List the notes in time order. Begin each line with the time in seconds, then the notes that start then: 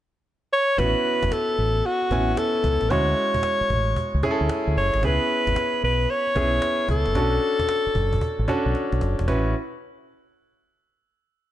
0.53 C#5
0.78 A1 B3 C#4 E4 F#4 B4, cajon bass
1.05 cajon slap
1.23 F#1, cajon bass, cajon slap
1.32 A4, cajon slap
1.49 cajon slap
1.58 A1, cajon slap
1.76 cajon slap
1.84 F#4, cajon slap
2.02 cajon slap
2.11 A1 B3 C#4 E4 G#5, cajon bass
2.28 cajon slap
2.37 A4, cajon slap
2.55 cajon slap
2.64 C#2, cajon bass
2.81 A1, cajon slap
2.90 D2 G#3 C#4 E4 F#4 C#5, cajon bass
3.08 cajon slap
3.17 cajon slap
3.34 muted fingered electric bass stroke, cajon bass, cajon slap
3.43 cajon slap
3.60 muted fingered electric bass stroke, cajon slap
3.70 A1, cajon bass
3.87 cajon slap
3.96 cajon bass
4.14 C#2, cajon slap
4.23 C#4 E4 G#4, cajon bass
4.31 A4
4.41 D2, cajon slap
4.49 cajon slap
4.67 D2, cajon slap
4.76 F#1 C#5, cajon slap
4.94 G#1, cajon slap
5.03 C#2 B3 C#4 E4 G#4 B4, cajon bass
5.47 G#1, cajon bass, cajon slap
5.56 cajon slap
5.74 cajon slap
5.83 B1 B4
6.00 cajon slap
6.11 C#5
6.27 cajon slap
6.35 B1 B3 C#4 E4 G#4, cajon bass
6.62 cajon slap
6.79 cajon slap
6.89 C#2 A4, cajon bass
7.06 F#1, cajon slap
7.15 B1 C#4 D4 F#4 A4, cajon bass
7.32 cajon slap
7.42 cajon slap
7.59 muted fingered electric bass stroke, cajon bass, cajon slap
7.69 cajon slap
7.87 muted fingered electric bass stroke
7.95 F#1, cajon bass
8.13 cajon bass
8.21 cajon bass
8.39 A1, cajon slap
8.48 C#4 D4 F#4 A4, cajon bass
8.66 B1, cajon slap
8.75 cajon slap
8.92 B1, cajon slap
9.01 F#1, cajon slap
9.19 E1, cajon slap
9.28 A1 C#4 E4 F#4 B4, cajon bass